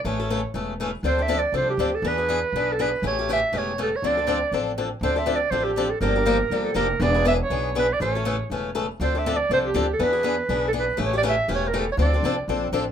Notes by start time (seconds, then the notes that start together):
0.05 A1 C#3 E3 A3 C#4 A4 C#5
0.20 A3 C#4 A4
0.30 C#3 E3 A3 C#4 A4
0.54 E1 C#3 E3 A3 C#4 A4
0.80 C#3 E3 A3 C#4 A4
1.03 D2 D3 F3 C4 D4 A4
1.07 C5
1.18 C4 D4 A4
1.22 E5
1.28 D3 F3 C4 D4 A4
1.39 D5
1.52 C2 D3 F3 C4 D4 A4
1.57 C5
1.70 G4
1.77 D2 D3 F3 C4 D4 A4
1.95 A4
2.02 E2 E3 B3 D4 G#4
2.08 B4
2.18 B3 D4 G#4
2.29 E3 B3 D4 G#4
2.53 B1 E3 B3 D4 G#4
2.73 A4
2.79 E3 B3 D4 G#4 B4
3.02 A1 C#3 E3 A3 C#4 G4
3.07 C#5
3.19 A3 C#4 G4
3.29 C#3 E3 A3 C#4 G4
3.33 E5
3.52 E1 C#3 E3 A3 C#4 G4
3.58 C#5
3.78 C#3 E3 A3 C#4 G4
3.83 A4
3.96 C#5
4.02 D2 D3 F3 C4 D4 A4
4.07 D5
4.17 C4 D4 A4
4.27 D3 F3 C4 D4 A4
4.52 A1 D3 F3 C4 D4 A4
4.78 D3 F3 C4 D4 A4
5.01 D2 D3 F3 C4 D4 A4 C5
5.16 C4 D4 A4 E5
5.26 D3 F3 C4 D4 A4
5.36 D5
5.51 A1 D3 F3 C4 D4 A4 C5
5.64 G4
5.76 D3 F3 C4 D4 A4
5.90 A4
6.01 G1 D3 F3 A#3 D4 G4 A#4
6.16 A#3 D4 G4
6.26 D3 F3 A#3 D4 G4
6.50 G1 D3 F3 A#3 D4 G4
6.65 A4
6.74 F1 D3 F3 A#3 D4 G4 A#4
7.00 E1 E3 B3 D4 G#4 D5
7.14 B3 D4 G#4
7.25 E3 B3 D4 G#4 E5
7.42 C#5
7.50 B1 E3 B3 D4 G#4
7.75 E3 B3 D4 G#4
7.79 B4
7.93 D5
8.00 A1 C#3 E3 A3 C#4 A4 C#5
8.15 A3 C#4 A4
8.25 C#3 E3 A3 C#4 A4
8.50 E1 C#3 E3 A3 C#4 A4
8.75 C#3 E3 A3 C#4 A4
9.00 D2 D3 F3 C4 D4 A4 C5
9.15 C4 D4 A4 E5
9.26 D3 F3 C4 D4 A4
9.37 D5
9.49 C2 D3 F3 C4 D4 A4
9.54 C5
9.66 G4
9.74 D2 D3 F3 C4 D4 A4
9.93 A4
9.99 E2 E3 B3 D4 G#4
10.04 B4
10.12 B3 D4 G#4
10.23 E3 B3 D4 G#4
10.49 B1 E3 B3 D4 G#4
10.68 A4
10.73 E3 B3 D4 G#4
10.80 B4
10.97 A1 C#3 E3 A3 C#4 G4
11.05 C#5
11.13 A3 C#4 G4
11.18 D5
11.23 C#3 E3 A3 C#4 G4
11.29 E5
11.48 E1 C#3 E3 A3 C#4 G4
11.55 C#5
11.68 A#4
11.73 C#3 E3 A3 C#4 G4
11.79 A4
11.92 C#5
11.97 D2 D3 F3 C4 D4 A4
12.02 D5
12.13 C4 D4 A4
12.23 C2 D3 F3 C4 D4 A4
12.48 A#1 D3 F3 C4 D4 A4
12.72 A1 D3 F3 C4 D4 A4